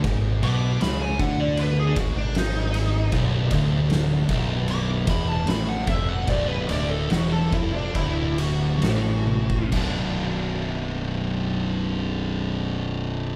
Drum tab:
CC |----------------|----------------|----------------|x---------------|
RD |x-x-x-x-x-x-x-x-|x-x-x-x-x-x-x-x-|x-x-x-x-x-x-x---|----------------|
SD |----o-------o---|----o-------o---|----o-------o---|----------------|
T1 |----------------|----------------|--------------o-|----------------|
BD |o-----o---o-----|o-o---o---o---o-|o-----o-o------o|o---------------|